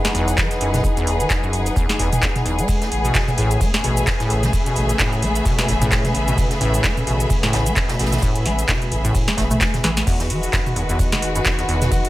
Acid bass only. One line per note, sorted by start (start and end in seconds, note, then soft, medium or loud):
0.05 0.08 E2 loud
0.15 0.39 E2 loud
0.38 0.49 E3 medium
0.61 0.85 F#2 medium
0.84 0.88 E2 loud
0.97 1.22 E2 loud
1.20 1.28 E3 medium
1.43 1.68 F#2 medium
1.66 1.69 E2 loud
1.76 1.87 E2 loud
1.99 2.10 E2 medium
2.22 2.30 E2 medium
2.45 2.60 E2 medium
2.59 2.83 G#3 medium
2.82 2.90 A3 medium
3.05 3.29 B2 medium
3.28 3.31 A2 loud
3.38 3.62 A2 loud
3.61 3.72 A3 medium
3.84 4.09 B2 medium
4.07 4.11 A2 loud
4.20 4.45 A2 loud
4.43 4.51 A3 medium
4.66 4.91 B2 medium
4.89 4.93 A2 loud
4.99 5.24 A2 loud
5.22 5.33 A3 medium
5.45 5.70 B2 medium
5.69 5.73 A2 loud
5.82 6.06 A2 loud
6.05 6.13 A3 medium
6.28 6.52 B2 medium
6.51 6.54 A2 loud
6.61 6.85 A2 loud
6.84 6.95 A3 medium
7.07 7.31 B2 medium
7.30 7.34 A2 loud
7.43 7.68 A2 loud
7.66 7.74 A3 medium
7.89 8.14 B2 medium
8.12 8.16 A2 loud
8.22 8.47 A2 loud
8.46 8.56 A3 medium
8.69 8.93 B2 medium
8.92 8.96 A2 loud
9.05 9.29 A2 loud
9.28 9.36 A3 medium
9.38 9.45 A3 medium
9.51 9.75 A3 medium
9.74 9.82 A2 medium
9.84 9.91 E3 loud
10.07 10.32 E2 loud
10.30 10.41 E3 medium
10.53 10.60 F#2 medium
10.76 10.83 E2 medium
10.89 11.14 E2 loud
11.12 11.21 E3 medium
11.35 11.41 F#2 medium
11.58 11.64 E2 medium
11.68 11.93 E2 loud
11.92 12.02 E3 medium